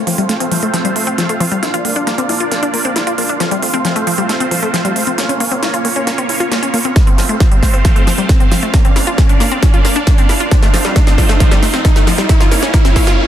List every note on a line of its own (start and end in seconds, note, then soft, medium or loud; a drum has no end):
0.00 1.61 A3 medium
0.00 1.61 C4 medium
0.00 10.48 F4 medium
0.00 1.61 C5 medium
0.00 6.92 F5 medium
0.00 riser medium
0.07 0.23 F1 loud
0.07 0.13 F3 loud
0.07 open hi-hat loud
0.18 0.27 G3 loud
0.18 closed hi-hat medium
0.29 0.35 A3 medium
0.29 snare soft
0.29 closed hi-hat medium
0.40 0.46 C4 loud
0.40 closed hi-hat medium
0.51 0.68 F1 medium
0.51 0.60 F3 medium
0.51 open hi-hat medium
0.63 0.68 A3 loud
0.63 closed hi-hat medium
0.74 0.79 F3 medium
0.74 snare soft
0.74 closed hi-hat medium
0.85 0.93 G3 loud
0.85 closed hi-hat medium
0.96 1.12 F1 medium
0.96 1.02 A3 medium
0.96 open hi-hat loud
1.07 1.13 C4 loud
1.07 closed hi-hat medium
1.18 1.27 F3 medium
1.18 snare soft
1.18 closed hi-hat medium
1.29 1.35 A3 loud
1.29 closed hi-hat medium
1.40 1.57 F1 medium
1.40 1.46 F3 loud
1.40 open hi-hat medium
1.51 1.60 G3 loud
1.51 closed hi-hat medium
1.63 3.39 A#3 medium
1.63 3.39 D4 medium
1.63 1.68 E4 medium
1.63 3.39 D5 medium
1.63 snare medium
1.63 closed hi-hat medium
1.74 1.80 F4 loud
1.74 closed hi-hat soft
1.85 2.01 A#1 loud
1.85 1.94 A#3 medium
1.85 open hi-hat loud
1.96 2.02 D4 loud
1.96 closed hi-hat medium
2.07 2.13 A#3 loud
2.07 snare medium
2.07 closed hi-hat medium
2.18 2.27 C4 loud
2.18 closed hi-hat medium
2.29 2.45 A#1 medium
2.29 2.35 E4 medium
2.29 open hi-hat medium
2.40 2.46 F4 loud
2.40 closed hi-hat medium
2.52 2.60 A#3 medium
2.52 snare medium
2.52 closed hi-hat medium
2.63 2.68 D4 loud
2.63 closed hi-hat medium
2.74 2.90 A#1 medium
2.74 2.79 A#3 loud
2.74 open hi-hat loud
2.85 2.94 C4 loud
2.85 closed hi-hat soft
2.96 3.02 E4 medium
2.96 snare medium
2.96 closed hi-hat medium
3.07 3.13 F4 loud
3.07 closed hi-hat medium
3.18 3.34 A#1 medium
3.18 3.27 A#3 medium
3.18 open hi-hat medium
3.29 3.35 D4 loud
3.29 closed hi-hat soft
3.40 3.46 F3 loud
3.40 5.16 A3 medium
3.40 5.17 C4 medium
3.40 5.17 C5 medium
3.40 snare medium
3.40 closed hi-hat medium
3.51 3.60 G3 loud
3.51 closed hi-hat soft
3.62 3.79 F1 loud
3.62 3.68 A3 medium
3.62 open hi-hat loud
3.74 3.79 C4 loud
3.74 closed hi-hat medium
3.85 3.93 F3 medium
3.85 snare medium
3.85 closed hi-hat medium
3.96 4.02 A3 loud
3.96 closed hi-hat medium
4.07 4.23 F1 medium
4.07 4.13 F3 loud
4.07 open hi-hat loud
4.18 4.27 G3 loud
4.18 closed hi-hat soft
4.29 4.35 A3 medium
4.29 snare medium
4.29 closed hi-hat medium
4.40 4.46 C4 loud
4.40 closed hi-hat soft
4.51 4.68 F1 medium
4.51 4.60 F3 medium
4.51 open hi-hat loud
4.63 4.68 A3 loud
4.63 closed hi-hat soft
4.74 4.79 F3 medium
4.74 snare medium
4.74 closed hi-hat medium
4.85 4.93 G3 loud
4.85 closed hi-hat soft
4.96 5.12 F1 medium
4.96 5.02 A3 medium
4.96 open hi-hat medium
5.07 5.13 C4 loud
5.07 closed hi-hat soft
5.18 5.27 A#3 medium
5.18 6.94 A#3 medium
5.18 6.94 C#4 medium
5.18 6.94 C#5 medium
5.18 snare medium
5.18 closed hi-hat medium
5.29 5.35 C#4 loud
5.29 closed hi-hat soft
5.40 5.57 A#1 loud
5.40 5.46 A#3 loud
5.40 open hi-hat loud
5.51 5.60 C4 loud
5.51 closed hi-hat medium
5.63 5.68 E4 medium
5.63 snare medium
5.63 closed hi-hat medium
5.74 5.79 F4 loud
5.74 closed hi-hat soft
5.85 6.01 A#1 loud
5.85 5.94 A#3 medium
5.85 open hi-hat loud
5.96 6.02 C#4 loud
5.96 closed hi-hat soft
6.07 6.13 A#3 loud
6.07 snare medium
6.07 closed hi-hat medium
6.18 6.27 C4 loud
6.18 closed hi-hat soft
6.29 6.45 A#1 loud
6.29 6.35 E4 medium
6.29 open hi-hat loud
6.40 6.46 F4 loud
6.40 closed hi-hat soft
6.51 6.60 A#3 medium
6.51 snare medium
6.51 closed hi-hat medium
6.62 6.68 C#4 loud
6.62 closed hi-hat soft
6.74 6.90 A#1 medium
6.74 6.79 A#3 loud
6.74 open hi-hat medium
6.85 6.94 C4 loud
6.85 closed hi-hat soft
6.96 7.02 A3 medium
6.96 8.72 A3 medium
6.96 8.72 C4 medium
6.96 8.72 C5 medium
6.96 12.25 F5 medium
6.96 kick loud
6.96 snare medium
6.96 closed hi-hat medium
7.07 7.13 C4 loud
7.07 closed hi-hat soft
7.18 7.34 F1 loud
7.18 7.27 F3 medium
7.18 snare medium
7.18 open hi-hat loud
7.29 7.35 A3 loud
7.29 closed hi-hat soft
7.40 7.46 F3 loud
7.40 kick loud
7.40 snare medium
7.40 closed hi-hat medium
7.51 7.60 G3 loud
7.51 closed hi-hat medium
7.63 7.79 F1 medium
7.63 7.68 A3 medium
7.63 kick medium
7.63 snare medium
7.63 open hi-hat medium
7.74 7.79 C4 loud
7.74 closed hi-hat soft
7.85 7.93 F3 medium
7.85 kick loud
7.85 snare medium
7.85 closed hi-hat medium
7.96 8.02 A3 loud
7.96 closed hi-hat medium
8.07 8.23 F1 medium
8.07 8.13 F3 loud
8.07 snare medium
8.07 open hi-hat loud
8.18 8.27 G3 loud
8.18 closed hi-hat soft
8.29 8.35 A3 medium
8.29 kick loud
8.29 snare medium
8.29 closed hi-hat medium
8.40 8.46 C4 loud
8.40 closed hi-hat soft
8.51 8.68 F1 medium
8.51 8.60 F3 medium
8.51 snare medium
8.51 open hi-hat medium
8.63 8.68 A3 loud
8.63 closed hi-hat soft
8.74 10.50 A#3 medium
8.74 8.80 A#3 loud
8.74 10.50 D4 medium
8.74 10.50 D5 medium
8.74 kick loud
8.74 snare medium
8.74 closed hi-hat medium
8.85 8.94 C4 loud
8.85 closed hi-hat medium
8.96 9.12 A#1 loud
8.96 9.02 E4 medium
8.96 snare medium
8.96 open hi-hat loud
9.07 9.13 F4 loud
9.07 closed hi-hat medium
9.18 9.27 A#3 medium
9.18 kick loud
9.18 snare medium
9.18 closed hi-hat medium
9.29 9.35 D4 loud
9.29 closed hi-hat medium
9.40 9.56 A#1 medium
9.40 9.46 A#3 loud
9.40 snare medium
9.40 open hi-hat medium
9.51 9.60 C4 loud
9.51 closed hi-hat medium
9.63 9.68 E4 medium
9.63 kick loud
9.63 snare medium
9.63 closed hi-hat medium
9.74 9.80 F4 loud
9.74 closed hi-hat medium
9.85 10.01 A#1 medium
9.85 9.94 A#3 medium
9.85 snare medium
9.85 open hi-hat loud
9.96 10.02 D4 loud
9.96 closed hi-hat medium
10.07 10.13 A#3 loud
10.07 kick loud
10.07 snare medium
10.07 closed hi-hat medium
10.18 10.27 C4 loud
10.18 closed hi-hat medium
10.29 10.45 A#1 medium
10.29 10.35 E4 medium
10.29 snare medium
10.29 open hi-hat medium
10.40 10.46 F4 loud
10.40 closed hi-hat medium
10.51 10.60 F3 medium
10.51 12.27 A3 medium
10.51 12.27 C4 medium
10.51 12.27 F4 medium
10.51 12.27 C5 medium
10.51 kick loud
10.51 snare medium
10.51 closed hi-hat medium
10.62 10.68 A3 loud
10.62 snare medium
10.62 closed hi-hat medium
10.74 10.90 F1 loud
10.74 10.79 F3 loud
10.74 snare loud
10.74 open hi-hat loud
10.85 10.93 G3 loud
10.85 snare medium
10.85 closed hi-hat medium
10.96 11.02 A3 medium
10.96 kick loud
10.96 snare loud
10.96 closed hi-hat medium
11.07 11.13 C4 loud
11.07 snare medium
11.07 closed hi-hat medium
11.18 11.27 F3 medium
11.18 kick medium
11.18 snare loud
11.18 open hi-hat medium
11.29 11.35 A3 loud
11.29 snare medium
11.29 closed hi-hat medium
11.40 11.46 F3 loud
11.40 kick loud
11.40 snare medium
11.40 closed hi-hat medium
11.51 11.60 G3 loud
11.51 snare medium
11.51 closed hi-hat medium
11.62 11.68 A3 medium
11.62 snare loud
11.62 open hi-hat loud
11.74 11.79 C4 loud
11.74 snare medium
11.74 closed hi-hat medium
11.85 11.93 F3 medium
11.85 kick loud
11.85 snare loud
11.85 closed hi-hat medium
11.96 12.02 A3 loud
11.96 snare medium
11.96 closed hi-hat medium
12.07 12.13 F3 loud
12.07 snare loud
12.07 open hi-hat medium
12.18 12.27 G3 loud
12.18 snare medium
12.18 closed hi-hat medium
12.29 13.27 A#3 medium
12.29 13.27 C#4 medium
12.29 12.35 E4 medium
12.29 13.27 F4 medium
12.29 13.27 C#5 medium
12.29 13.27 F5 medium
12.29 kick loud
12.29 snare loud
12.29 closed hi-hat medium
12.40 12.46 F4 loud
12.40 snare medium
12.40 closed hi-hat medium
12.51 12.68 A#1 loud
12.51 12.60 A#3 medium
12.51 snare loud
12.51 open hi-hat loud
12.63 12.68 C#4 loud
12.63 snare medium
12.63 closed hi-hat medium
12.74 12.80 A#3 loud
12.74 kick loud
12.74 snare loud
12.74 closed hi-hat medium
12.85 12.94 C4 loud
12.85 snare medium
12.85 closed hi-hat medium
12.96 13.12 A#1 loud
12.96 13.02 E4 medium
12.96 kick medium
12.96 snare loud
12.96 open hi-hat medium
13.07 13.13 F4 loud
13.07 snare medium
13.07 closed hi-hat medium